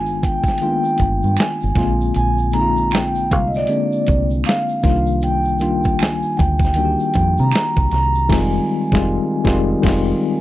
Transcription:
Already playing: G1 D#3 G#3 B3 D4 F4 G#5
0.06 shaker
0.23 B1 G5, kick, closed hi-hat
0.44 kick, shaker
0.48 snare
0.58 D#3, closed hi-hat, shaker
0.62 G#3 A#3 D4 F4 G5
0.69 B3
0.84 shaker
0.98 G1, kick, closed hi-hat, shaker
1.23 G2, shaker
1.37 G#5, finger snap, snare, closed hi-hat, shaker
1.62 G1, shaker
1.75 A#1 D3 G#3 A#3 C4 F4, kick, snare, closed hi-hat, shaker
2.01 shaker
2.14 A#1 G#5, closed hi-hat, shaker
2.38 shaker
2.51 D3 G#3 A#3 C4 D#4 A#5, closed hi-hat, shaker
2.61 F4
2.76 shaker
2.91 G5, finger snap, snare, closed hi-hat, shaker
3.15 shaker
3.31 C2 F5, kick, closed hi-hat
3.48 D#5
3.54 D5, snare, shaker
3.67 D3 G#3 A#3 C4 D4, closed hi-hat, shaker
3.92 shaker
4.06 C2, kick, closed hi-hat, shaker
4.30 shaker
4.44 F5, finger snap, closed hi-hat, shaker
4.49 snare
4.68 shaker
4.82 C2 D#3 G3 A#3 D4 F4, kick, closed hi-hat, shaker
4.88 snare
5.07 shaker
5.22 G5, closed hi-hat, shaker
5.45 shaker
5.59 D#3 G3 A#3 D4 F4, closed hi-hat, shaker
5.84 kick, shaker
5.99 G#5, finger snap, snare, closed hi-hat, shaker
6.22 shaker
6.37 D2 G5, kick, closed hi-hat
6.59 kick, shaker
6.65 snare
6.74 D#3 G3 A#3 D4 G5, closed hi-hat, shaker
6.78 F#4
6.85 G4
7.00 shaker
7.14 F2, kick, closed hi-hat, shaker
7.38 C3 A#5, shaker
7.52 finger snap, snare, closed hi-hat, shaker
7.76 C2, kick, shaker
7.91 C2 A#5, snare, closed hi-hat, shaker
8.15 shaker
8.29 F1 D#3 G3 G#3 C4 F4 G#5, kick, snare, crash
8.92 F1 D#3 G3 G#3 C4 F4, kick, snare
9.44 F1 D#3 G3 G#3 C4 F4, kick, snare
9.82 F1 D#3 G3 G#3 C4 F4, kick, crash
9.87 snare

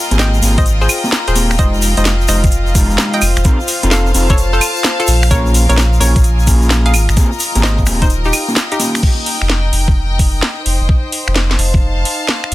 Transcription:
Already playing: F4 A#4 D#5 F5 G5
0.11 G#1 A#3 C4 G4 G#4, closed hi-hat, shaker
0.19 D#5 G5, snare, closed hi-hat, shaker
0.34 shaker
0.42 G#1 A#3 C4 G4 G#4, open hi-hat, shaker
0.58 C5 D#5, kick, closed hi-hat, shaker
0.66 closed hi-hat, shaker
0.81 G#4 C5, shaker
0.89 open hi-hat, claves, shaker
1.04 A#3 C4 G4 G#4, shaker
1.12 snare, shaker
1.28 D#1 G#4 C5, closed hi-hat, shaker
1.35 A#3 C4 G4 G#4, open hi-hat, shaker
1.51 finger snap, open hi-hat, shaker
1.59 F1 G#3 D#4 F4 G4 C5 D#5, kick, closed hi-hat, shaker
1.74 shaker
1.82 open hi-hat, shaker
1.97 F1 G#3 D#4 F4 G4 C5 D#5, closed hi-hat, shaker
2.05 snare, closed hi-hat, shaker
2.21 shaker
2.28 F1 G#3 D#4 F4 G4 C5 D#5, finger snap, open hi-hat, shaker
2.44 kick, closed hi-hat, shaker
2.51 closed hi-hat, shaker
2.66 shaker
2.75 G#3 D#4 F4 G4, kick, open hi-hat, shaker
2.90 shaker
2.98 snare, shaker
3.13 D#5 G5, closed hi-hat, shaker
3.22 F1 C5, open hi-hat, claves, shaker
3.36 F1, finger snap, shaker
3.41 C4 F5, shaker
3.45 D#4 F4 A4, kick, closed hi-hat
3.60 shaker
3.68 open hi-hat, shaker
3.83 F1 C4 D#4 F4 A4, closed hi-hat, shaker
3.91 A4 F5, snare, closed hi-hat, shaker
4.06 shaker
4.14 F1 C4 D#4 F4 A4 A5, open hi-hat, shaker
4.29 A4 C#5, kick, closed hi-hat, shaker
4.38 closed hi-hat, shaker
4.53 A4 C5, shaker
4.61 open hi-hat, claves, shaker
4.76 shaker
4.84 snare, shaker
5.00 F4 A4, closed hi-hat, shaker
5.07 A#1, open hi-hat, shaker
5.22 finger snap, open hi-hat, shaker
5.31 A#3 C#4 F4 G#4 A#4 C#5, kick, closed hi-hat, shaker
5.46 D#5, shaker
5.54 open hi-hat, shaker
5.69 A#1 A#3 C#4 F4 G#4 A#4 C#5, closed hi-hat, shaker
5.78 snare, closed hi-hat, shaker
5.93 shaker
6.00 A#1 A#3 C#4 F4 G#4 A#4 C#5, open hi-hat, shaker
6.05 G#5
6.16 kick, closed hi-hat, shaker
6.24 closed hi-hat, shaker
6.39 shaker
6.47 A#3 C#4 F4 G#4, kick, open hi-hat, shaker
6.62 shaker
6.70 snare, shaker
6.86 G#4 F5, closed hi-hat, shaker
6.94 G#1, open hi-hat, claves, shaker
7.09 G#1, finger snap, closed hi-hat, shaker
7.17 A#3 C4 G4 G#4, kick, closed hi-hat, shaker
7.32 G5, shaker
7.40 open hi-hat, shaker
7.55 G#1 A#3 C4 G4 G#4, closed hi-hat, shaker
7.63 C5 D#5, snare, closed hi-hat, shaker
7.78 kick, shaker
7.86 D#1 A#3 C4 G4 G#4, finger snap, open hi-hat, shaker
8.02 D#4 C5, kick, closed hi-hat, shaker
8.10 closed hi-hat, shaker
8.24 D#4 G4, shaker
8.33 open hi-hat, claves, shaker
8.48 A#3 C#4 D#4 G4, shaker
8.56 snare, shaker
8.72 D#4 G4, closed hi-hat, shaker
8.79 A#3 C#4 D#4 G4, open hi-hat, shaker
8.95 finger snap, open hi-hat, shaker
9.03 D#4 D#5, kick, crash
9.26 open hi-hat
9.42 F1, finger snap
9.50 snare
9.73 F1, open hi-hat
9.88 kick
10.19 kick, open hi-hat
10.43 snare
10.66 F1 C5, open hi-hat
10.81 F1
10.89 kick
11.12 open hi-hat
11.27 F1, finger snap
11.36 F5, snare
11.51 A5, snare
11.59 F1, open hi-hat
11.74 kick
12.05 open hi-hat
12.29 snare
12.44 finger snap

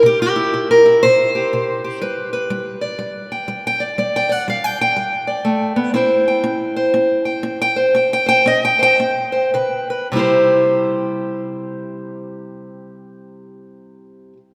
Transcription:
0.03 C3 G4
0.22 G4
0.36 E4
0.54 C3
0.71 A#4
0.85 E4
1.03 C3 C5
1.35 G4
1.53 C3
1.84 G4
2.02 G3 B4
2.33 B4
2.50 G3
2.81 D5
2.99 G3
3.32 G5
3.48 G3
3.67 G5
3.80 D5
3.98 G3 D5
4.16 G5
4.29 D5 F#5
4.48 G3 F5
4.64 G5
4.81 G5
4.96 G3
5.27 D5
5.45 A3
5.76 B3
5.94 C4 E4 C5 G5
6.28 G5
6.44 C4
6.76 C5
6.94 C4
7.25 G5
7.43 C4
7.62 G5
7.76 C5
7.95 C4 G5
8.13 G5
8.26 C5 G5
8.46 C4 D#5
8.65 G5
8.79 C5 G5
9.00 C4
9.32 C5
9.54 C#3 B4
9.90 B4
10.12 C3 G3 E4
10.17 G4 C5

